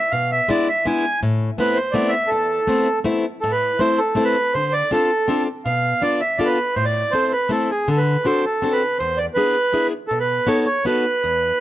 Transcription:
Already playing: accordion E5
0.11 steel-string acoustic guitar B2, accordion F5
0.32 accordion E5
0.48 steel-string acoustic guitar G#3 B3 D4 E4, accordion D5
0.68 accordion E5
0.85 steel-string acoustic guitar G#3 B3 D4 E4, accordion G#5
1.23 steel-string acoustic guitar A2
1.58 steel-string acoustic guitar A3 B3 C4 E4, accordion B4
1.75 accordion C5
1.92 steel-string acoustic guitar A3 B3 C4 E4, accordion D5
2.09 accordion E5
2.27 accordion A4
2.32 steel-string acoustic guitar E2
2.67 steel-string acoustic guitar A3 B3 C4 E4
3.04 steel-string acoustic guitar A3 B3 C4 E4
3.41 steel-string acoustic guitar A2, accordion A4
3.51 accordion B4
3.79 steel-string acoustic guitar A3 C4 E4 A4, accordion C5
3.98 accordion A4
4.15 steel-string acoustic guitar A3 C4 E4 A4
4.24 accordion B4
4.54 steel-string acoustic guitar D3, accordion C5
4.73 accordion D5
4.91 steel-string acoustic guitar C4 D4 F4 A4, accordion A4
5.28 steel-string acoustic guitar C4 D4 F4 A4
5.65 steel-string acoustic guitar B2, accordion F5
6.02 steel-string acoustic guitar B3 D4 F4 A4, accordion D5
6.21 accordion E5
6.38 steel-string acoustic guitar B3 D4 F4 A4, accordion D5
6.46 accordion B4
6.75 steel-string acoustic guitar A2, accordion C5
6.85 accordion D5
7.11 steel-string acoustic guitar A3 C4 E4 A4, accordion C5
7.32 accordion B4
7.49 steel-string acoustic guitar A3 C4 E4 A4, accordion A4
7.70 accordion G#4
7.88 steel-string acoustic guitar D3, accordion A4
7.97 accordion B4
8.24 steel-string acoustic guitar C4 D4 F#4 A4, accordion C5
8.45 accordion A4
8.62 steel-string acoustic guitar C4 D4 F#4 A4
8.72 accordion B4
8.99 steel-string acoustic guitar E2, accordion C5
9.17 accordion D5
9.34 steel-string acoustic guitar B3 D4 E4 G#4, accordion B4
9.73 steel-string acoustic guitar B3 D4 E4 G#4
10.08 steel-string acoustic guitar B2, accordion A4
10.20 accordion B4
10.47 steel-string acoustic guitar B3 D#4 F#4 A4, accordion C#5
10.66 accordion C#5
10.85 steel-string acoustic guitar B3 D#4 F#4 A4, accordion B4
11.24 steel-string acoustic guitar E2

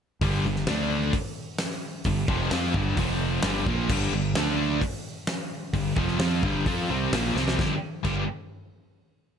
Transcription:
0.21 fingered electric bass G1, distorted electric guitar G2 D3 G3, kick, open hi-hat
0.44 fingered electric bass G1, distorted electric guitar G2 D3
0.56 snare
0.67 fingered electric bass D2, distorted electric guitar D3 A3 D4, snare, open hi-hat
1.13 kick, open hi-hat
1.58 snare, open hi-hat
1.71 snare
2.04 fingered electric bass G1, distorted electric guitar G2 D3, kick, open hi-hat
2.28 fingered electric bass F1, distorted electric guitar F2 C3 F3, kick
2.51 fingered electric bass F2, distorted electric guitar F3 C4 F4, snare, open hi-hat
2.74 fingered electric bass G1, distorted electric guitar G2 D3 G3, kick
2.97 fingered electric bass F1, distorted electric guitar F2 C3 F3, kick, open hi-hat
3.42 fingered electric bass G1, distorted electric guitar G2 D3 G3, snare, open hi-hat
3.66 fingered electric bass A#1, distorted electric guitar A#2 F3 A#3, kick
3.89 fingered electric bass G1, distorted electric guitar G2 D3 G3, kick, crash
4.12 fingered electric bass G1, distorted electric guitar G2 D3
4.34 fingered electric bass D2, distorted electric guitar D3 A3 D4, snare, open hi-hat
4.82 kick, open hi-hat
5.27 snare, open hi-hat
5.73 fingered electric bass G1, distorted electric guitar G2 D3, kick, open hi-hat
5.96 fingered electric bass F1, distorted electric guitar F2 C3 F3, kick
6.08 snare
6.19 fingered electric bass F2, distorted electric guitar F3 C4 F4, snare, open hi-hat
6.43 fingered electric bass G1, distorted electric guitar G2 D3 G3, kick
6.66 fingered electric bass F2, distorted electric guitar F3 C4 F4, kick, open hi-hat
6.89 fingered electric bass C2, distorted electric guitar C3 G3 C4
7.12 fingered electric bass A#1, distorted electric guitar A#2 F3 A#3, snare, open hi-hat
7.24 snare
7.35 fingered electric bass C2, distorted electric guitar C3 G3 C4, snare
7.48 snare
7.59 fingered electric bass G1, distorted electric guitar G2 D3 G3 A#3 D4 G4, kick, snare
8.04 fingered electric bass G1, distorted electric guitar G2 D3 G3 A#3 D4 G4, kick, crash

